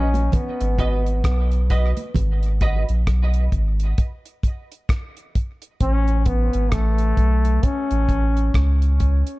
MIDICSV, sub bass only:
0, 0, Header, 1, 2, 480
1, 0, Start_track
1, 0, Key_signature, 5, "minor"
1, 0, Tempo, 911854
1, 1134, Time_signature, 4, 2, 24, 8
1, 4944, End_track
2, 0, Start_track
2, 0, Title_t, "Sub bass"
2, 0, Program_c, 0, 38
2, 0, Note_on_c, 0, 34, 88
2, 154, Note_off_c, 0, 34, 0
2, 320, Note_on_c, 0, 32, 87
2, 406, Note_off_c, 0, 32, 0
2, 414, Note_on_c, 0, 32, 80
2, 655, Note_on_c, 0, 35, 88
2, 662, Note_off_c, 0, 32, 0
2, 1017, Note_off_c, 0, 35, 0
2, 1136, Note_on_c, 0, 32, 108
2, 1498, Note_off_c, 0, 32, 0
2, 1522, Note_on_c, 0, 34, 88
2, 1607, Note_off_c, 0, 34, 0
2, 1618, Note_on_c, 0, 35, 90
2, 1835, Note_off_c, 0, 35, 0
2, 1855, Note_on_c, 0, 32, 98
2, 2074, Note_off_c, 0, 32, 0
2, 3058, Note_on_c, 0, 33, 108
2, 3419, Note_off_c, 0, 33, 0
2, 3444, Note_on_c, 0, 32, 85
2, 3529, Note_off_c, 0, 32, 0
2, 3540, Note_on_c, 0, 33, 98
2, 3757, Note_off_c, 0, 33, 0
2, 3777, Note_on_c, 0, 35, 94
2, 3995, Note_off_c, 0, 35, 0
2, 4164, Note_on_c, 0, 33, 80
2, 4249, Note_off_c, 0, 33, 0
2, 4257, Note_on_c, 0, 33, 89
2, 4476, Note_off_c, 0, 33, 0
2, 4499, Note_on_c, 0, 37, 90
2, 4860, Note_off_c, 0, 37, 0
2, 4944, End_track
0, 0, End_of_file